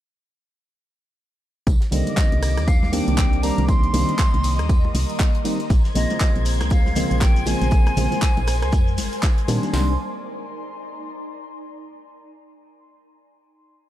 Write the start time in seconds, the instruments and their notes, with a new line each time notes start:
1.67 fm bass C2, ambient pad D#3, analog synth pad G3 A#3 D6, kick, closed hi-hat, tambourine, muted conga
1.81 snare, closed hi-hat
1.91 fm bass C2, synth stab D3 D#3 G3 A#3 C4, flute D#5, ambient pad D6, open hi-hat, ride, tambourine
2.07 closed hi-hat, high conga
2.17 kick, snare, clap, closed hi-hat, tambourine, muted conga
2.32 fm bass C2, closed hi-hat
2.43 cross-stick, open hi-hat, ride, tambourine
2.57 fm bass D#2, cross-stick, snare, closed hi-hat, muted conga
2.67 flute F5, kick, closed hi-hat, tambourine
2.78 ambient pad A#5
2.83 snare, high conga
2.92 synth stab D#3 G3 A#3 C4 D4, flute G5, open hi-hat, ride, tambourine, high conga, low conga
3.08 fm bass C2, closed hi-hat, muted conga
3.18 kick, snare, clap, closed hi-hat, tambourine
3.29 ambient pad C6, closed hi-hat
3.43 synth stab D#3 G3 A#3 C4 D4, flute A#5, open hi-hat, ride, tambourine, muted conga
3.58 fm bass C2, closed hi-hat, low conga
3.68 analog synth pad D#5, flute C6, kick, closed hi-hat, tambourine
3.84 closed hi-hat
3.93 fm bass C2, synth stab D#3 G3 A#3 C4 D4, open hi-hat, ride, tambourine, muted conga, low conga
4.08 closed hi-hat, high conga
4.19 kick, snare, clap, closed hi-hat, tambourine
4.34 fm bass C2, closed hi-hat, muted conga
4.43 open hi-hat, ride, tambourine
4.59 fm bass D#2, cross-stick, closed hi-hat
4.69 kick, closed hi-hat, tambourine
4.85 muted conga
4.94 fm bass C2, snare, open hi-hat, ride, high conga
5.10 closed hi-hat
5.19 kick, snare, clap, closed hi-hat, tambourine, muted conga
5.35 closed hi-hat
5.44 synth stab D#3 G3 A#3 C4 D#4, open hi-hat, ride, tambourine
5.60 closed hi-hat
5.70 fm bass A#1, analog synth pad G#3 C5, string machine G#6, kick, closed hi-hat, tambourine, muted conga, shekere
5.84 snare, closed hi-hat, shekere
5.94 fm bass A#1, synth stab C#3 F3 G#3 A#3 C4, ambient pad A#4, flute D#5, open hi-hat, ride, tambourine, shekere
6.10 closed hi-hat, muted conga, high conga, shekere
6.20 kick, snare, clap, closed hi-hat, tambourine, shekere
6.36 fm bass A#1, closed hi-hat
6.45 open hi-hat, ride, tambourine, shekere
6.52 ambient pad G#5
6.60 fm bass C#2, cross-stick, snare, closed hi-hat, muted conga, shekere
6.70 flute F5, kick, closed hi-hat, tambourine, shekere
6.86 snare, high conga, shekere
6.96 synth stab C#3 F3 G#3 A#3 C4, open hi-hat, ride, tambourine, muted conga, high conga, low conga, shekere
7.11 fm bass A#1, closed hi-hat, shekere
7.21 flute G5, kick, snare, clap, closed hi-hat, tambourine, shekere
7.36 closed hi-hat, shekere
7.46 synth stab C#3 F3 G#3 A#3 C4, flute G#5, open hi-hat, ride, tambourine, muted conga, shekere
7.61 fm bass A#1, closed hi-hat, low conga, shekere
7.71 kick, closed hi-hat, tambourine, shekere
7.86 cross-stick, closed hi-hat, muted conga, shekere
7.97 fm bass A#1, synth stab C#3 F3 G#3 A#3 C4, open hi-hat, ride, tambourine, low conga, shekere
8.12 closed hi-hat, high conga, shekere
8.22 kick, snare, clap, closed hi-hat, tambourine, shekere
8.37 fm bass A#1, closed hi-hat, muted conga
8.47 cross-stick, open hi-hat, ride, tambourine, shekere
8.62 fm bass C#2, cross-stick, closed hi-hat, shekere
8.72 fm bass F2, kick, closed hi-hat, tambourine, muted conga, shekere
8.88 shekere
8.98 fm bass G#1, snare, open hi-hat, ride, high conga, shekere
9.13 closed hi-hat, shekere
9.23 kick, snare, clap, closed hi-hat, tambourine, muted conga, shekere
9.38 closed hi-hat, shekere
9.48 fm bass A#2, synth stab D#3 G3 A#3 C4 D4, open hi-hat, ride, tambourine, shekere
9.63 closed hi-hat, muted conga, shekere
9.72 fm bass C2, synth stab D#3 G3 A#3 C4 D4, ambient pad D#4, flute C6, snare, open hi-hat
9.83 ambient pad D5
9.90 ambient pad A#5
9.97 ambient pad C6